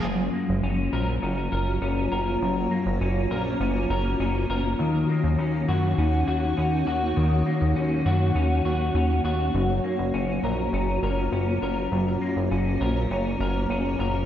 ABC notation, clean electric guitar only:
X:1
M:4/4
L:1/8
Q:1/4=101
K:Gb
V:1 name="Clean electric guitar"
G,, B, D B D B D B | G,, B, D B D B D B | E, B, D G D G D G | E, B, D G D G D G |
G,, B, D B D B D B | G,, B, D B D B D B |]